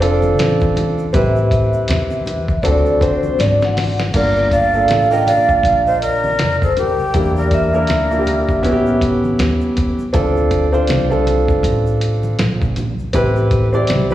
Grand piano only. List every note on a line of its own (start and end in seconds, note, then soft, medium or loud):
0.00 1.03 C4 medium
0.00 1.03 D4 medium
0.00 1.03 F4 medium
0.00 1.03 A4 loud
1.13 2.49 C4 medium
1.13 2.49 E4 medium
1.13 2.50 G4 medium
1.13 2.50 B4 medium
2.64 2.98 C4 medium
2.64 2.98 D4 medium
2.64 2.98 F#4 medium
2.64 2.98 A4 medium
3.00 4.03 C4 medium
3.00 4.03 D4 medium
3.00 4.03 F#4 medium
3.00 4.03 C5 medium
4.13 4.66 A#3 medium
4.13 4.66 D4 medium
4.13 4.66 F4 medium
4.13 4.67 A#4 medium
4.73 5.06 A#3 medium
4.73 5.06 D4 medium
4.73 5.06 F4 medium
4.73 5.07 A4 medium
5.10 6.40 A#3 medium
5.10 6.41 D4 medium
5.10 6.41 F4 medium
5.10 6.41 A#4 medium
7.13 7.66 A#3 medium
7.13 7.66 D4 medium
7.13 7.66 E4 medium
7.13 7.67 G4 medium
7.73 8.06 A#3 medium
7.73 8.06 D4 medium
7.73 8.06 E4 medium
7.73 8.06 A#4 medium
8.11 8.64 A#3 medium
8.11 8.64 D4 medium
8.11 8.62 E4 medium
8.11 8.17 F4 medium
8.19 8.68 G4 medium
8.63 9.99 B3 medium
8.63 9.99 C#4 medium
8.63 10.00 E4 medium
8.63 8.72 F#4 medium
8.71 10.03 G4 loud
10.13 10.65 C4 medium
10.13 10.66 D4 medium
10.13 10.66 F4 medium
10.13 10.66 A4 medium
10.72 11.05 C4 medium
10.72 11.06 D4 medium
10.72 11.06 F4 medium
10.72 11.06 C5 medium
11.10 12.40 C4 medium
11.10 12.40 D4 medium
11.10 12.41 F4 medium
11.10 12.41 A4 medium
13.13 13.65 C4 medium
13.13 13.66 E4 medium
13.13 13.66 G4 medium
13.13 13.67 B4 loud
13.73 14.06 C4 medium
13.73 14.06 E4 medium
13.73 14.06 G4 medium
13.73 14.07 D5 loud
14.10 14.14 C4 medium
14.10 14.14 E4 medium